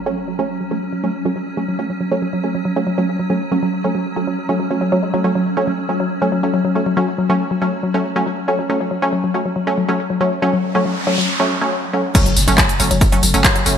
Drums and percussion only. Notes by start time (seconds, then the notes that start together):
12.15 kick, closed hi-hat, crash, ride, tambourine
12.26 closed hi-hat, ride
12.37 open hi-hat, ride, tambourine
12.48 closed hi-hat, ride, tambourine
12.58 kick, clap, closed hi-hat, ride, tambourine
12.69 closed hi-hat, ride
12.80 open hi-hat, ride, tambourine
12.91 closed hi-hat, ride, tambourine
13.01 kick, closed hi-hat, ride, tambourine
13.12 closed hi-hat, ride
13.23 open hi-hat, ride, tambourine
13.34 closed hi-hat, ride, tambourine
13.44 kick, clap, closed hi-hat, ride
13.56 closed hi-hat, ride
13.66 open hi-hat, ride, tambourine